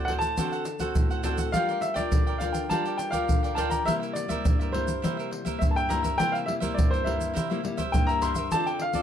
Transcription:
Already playing: nylon-string guitar A2
0.05 nylon-string guitar C4 A4, cavaquinho D4 A4, grand piano F#5, pandeiro, surdo
0.09 nylon-string guitar F#4, cavaquinho C5 F#5
0.19 grand piano A5, pandeiro, shaker
0.37 nylon-string guitar D3 C4 F#4 A4, cavaquinho D4 A4 C5 F#5, pandeiro, shaker, surdo
0.52 cavaquinho A4 C5 F#5, pandeiro, shaker
0.65 muted cavaquinho stroke, pandeiro, shaker
0.80 nylon-string guitar C4 F#4 A4, cavaquinho A4 C5 F#5, pandeiro, shaker, surdo
0.95 nylon-string guitar A2, pandeiro, shaker, surdo
1.10 cavaquinho A4 C5 F#5, pandeiro, shaker
1.23 nylon-string guitar C4 F#4 A4, cavaquinho D4 A4 C5 F#5, pandeiro, shaker, surdo
1.38 cavaquinho A4 C5 F#5, pandeiro, shaker, surdo
1.52 nylon-string guitar G3 D4 F4 A#4, cavaquinho F4 A#4 D5 G5, grand piano F5, pandeiro, shaker, surdo
1.68 cavaquinho A#4 D5 G5, pandeiro, shaker
1.81 grand piano E5, muted cavaquinho stroke, pandeiro, shaker
1.94 nylon-string guitar D4 F4 A#4, cavaquinho A#4 D5 G5, grand piano D5, pandeiro, shaker, surdo
2.12 nylon-string guitar D3, pandeiro, shaker, surdo
2.27 cavaquinho A#4 D5 G5, pandeiro, shaker
2.38 nylon-string guitar D4 F4 A#4, cavaquinho F4 A#4 D5 G5, grand piano F5, pandeiro, shaker, surdo
2.53 grand piano G5, pandeiro, shaker
2.69 nylon-string guitar G3 D4 F4 A#4, cavaquinho F4 A#4 D5 G5, grand piano A5, pandeiro, shaker, surdo
2.85 cavaquinho A#4 D5 G5, pandeiro, shaker
2.98 grand piano G5, muted cavaquinho stroke, pandeiro, shaker
3.11 nylon-string guitar D4 F4 A#4, cavaquinho A#4 D5 G5, grand piano F5, pandeiro, shaker, surdo
3.28 nylon-string guitar D3, pandeiro, shaker, surdo
3.43 cavaquinho A#4 D5 G5, pandeiro, shaker
3.55 nylon-string guitar D4 F4 A#4, cavaquinho F4 A#4 D5 G5, grand piano A5, pandeiro, shaker, surdo
3.70 cavaquinho A#4 D5 G5, grand piano A#5, pandeiro, shaker, surdo
3.85 nylon-string guitar C3 G3 A#3 E4, cavaquinho E4 A#4 C5 E5, grand piano E5, pandeiro, shaker, surdo
4.00 cavaquinho A#4 C5 E5, pandeiro, shaker
4.13 grand piano D5, muted cavaquinho stroke, pandeiro, shaker
4.28 nylon-string guitar G3 A#3 E4, cavaquinho A#4 C5 E5, pandeiro, shaker, surdo
4.45 nylon-string guitar G2, pandeiro, shaker, surdo
4.59 cavaquinho A#4 C5 E5, pandeiro, shaker
4.72 nylon-string guitar G3 A#3 E4, cavaquinho E4 A#4 C5 E5, grand piano C5, pandeiro, surdo
4.88 pandeiro, shaker
5.02 nylon-string guitar C3 G3 A#3 E4, cavaquinho E4 A#4 C5 E5, pandeiro, shaker, surdo
5.17 cavaquinho A#4 C5 E5, pandeiro, shaker
5.31 muted cavaquinho stroke, pandeiro
5.45 nylon-string guitar G3 A#3 E4, cavaquinho A#4 C5 E5, pandeiro, shaker, surdo
5.59 nylon-string guitar G2, grand piano E5, pandeiro, shaker, surdo
5.71 grand piano A5
5.76 cavaquinho A#4 C5 E5, grand piano G5, pandeiro, shaker
5.89 nylon-string guitar G3 A#3 E4, cavaquinho E4 A#4 C5 E5, grand piano A#5, pandeiro, shaker, surdo
6.03 cavaquinho A#4 C5 E5, pandeiro, shaker, surdo
6.18 nylon-string guitar C3 G3 A#3 E4, cavaquinho E4 A#4 C5 E5, grand piano G5, pandeiro, shaker, surdo
6.32 cavaquinho A#4 C5 E5, grand piano F5, pandeiro, shaker
6.46 nylon-string guitar G3 A#3 E4, grand piano E5, muted cavaquinho stroke, pandeiro
6.60 nylon-string guitar G3 A#3 E4, cavaquinho A#4 C5 E5, pandeiro, shaker, surdo
6.74 nylon-string guitar G2, grand piano D5
6.79 pandeiro, shaker, surdo
6.91 cavaquinho A#4 C5 E5, grand piano C5, pandeiro, shaker
7.04 nylon-string guitar G3 A#3 E4, cavaquinho E4 A#4 C5 E5, grand piano E5, pandeiro, surdo
7.21 pandeiro, shaker
7.34 nylon-string guitar C3, cavaquinho E4 A#4 C5 E5, pandeiro, shaker, surdo
7.50 nylon-string guitar G3 A#3 E4, cavaquinho A#4 C5 E5, pandeiro, shaker
7.64 nylon-string guitar G3 A#3 E4, muted cavaquinho stroke, pandeiro
7.77 cavaquinho A#4 C5 E5, pandeiro, shaker, surdo
7.92 nylon-string guitar G2 G3 A#3 E4, grand piano G5, pandeiro, shaker, surdo
8.07 cavaquinho C5 E5, grand piano A#5, pandeiro, shaker
8.11 cavaquinho A#4
8.22 cavaquinho E4 A#4 C5 E5, grand piano C6, pandeiro, shaker, surdo
8.35 cavaquinho A#4 C5 E5, pandeiro, shaker, surdo
8.52 nylon-string guitar D3 C4 F4 A4, cavaquinho F4 A4 C5 D5, grand piano A5, pandeiro, shaker, surdo
8.66 cavaquinho A4 C5 D5, grand piano G5, pandeiro, shaker
8.79 grand piano F5, muted cavaquinho stroke, pandeiro
8.93 nylon-string guitar C4 F4 A4, cavaquinho A4 C5 D5, pandeiro, shaker, surdo

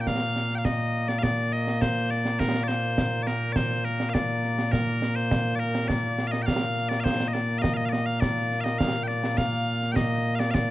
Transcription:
Already playing: bagpipes A#2 A#3
0.01 bagpipes G5
0.07 bagpipes F5, concert bass drum, snare
0.36 snare
0.51 snare
0.55 bagpipes F5 G5
0.65 bagpipes D#5, concert bass drum, snare
1.08 bagpipes D5, snare
1.19 bagpipes F5
1.23 bagpipes D5, concert bass drum, snare
1.52 bagpipes D#5
1.67 snare
1.81 bagpipes C5, concert bass drum, snare
2.10 bagpipes D5, snare
2.25 snare
2.39 bagpipes A#4, concert bass drum, snare
2.55 snare
2.63 bagpipes D5
2.68 bagpipes C5, snare
2.98 concert bass drum, snare
3.23 bagpipes D5
3.27 bagpipes A#4, snare
3.52 bagpipes C5 D5, concert bass drum, snare
3.71 snare
3.85 bagpipes A#4, snare
4.00 snare
4.09 bagpipes F5
4.14 bagpipes D5, concert bass drum, snare
4.44 snare
4.59 snare
4.72 bagpipes A#4, concert bass drum, snare
5.02 snare
5.16 bagpipes C5, snare
5.31 concert bass drum, snare
5.55 bagpipes D5
5.59 bagpipes A#4
5.75 snare
5.88 bagpipes D5, concert bass drum, snare
6.18 snare
6.27 bagpipes F5
6.32 bagpipes D#5, snare
6.42 bagpipes F5 G5
6.48 concert bass drum, snare
6.77 snare
6.89 bagpipes D5, snare
7.00 bagpipes C5 F5
7.06 concert bass drum, snare
7.20 snare
7.28 bagpipes D#5
7.33 bagpipes D5, snare
7.59 bagpipes D#5 F5
7.64 concert bass drum, snare
7.74 bagpipes D#5 F5
7.86 bagpipes D5 F5
7.92 bagpipes D#5, snare
8.06 bagpipes F5
8.20 bagpipes D5, concert bass drum, snare
8.37 snare
8.51 snare
8.61 bagpipes D#5 F5
8.66 snare
8.79 bagpipes F5, concert bass drum, snare
9.03 bagpipes G5
9.08 bagpipes D5, snare
9.24 snare
9.37 bagpipes F5, concert bass drum, snare
9.82 snare
9.92 bagpipes D#5 G5
9.96 concert bass drum, snare
10.35 bagpipes D5 F5
10.40 snare
10.51 bagpipes D5 F5, concert bass drum, snare

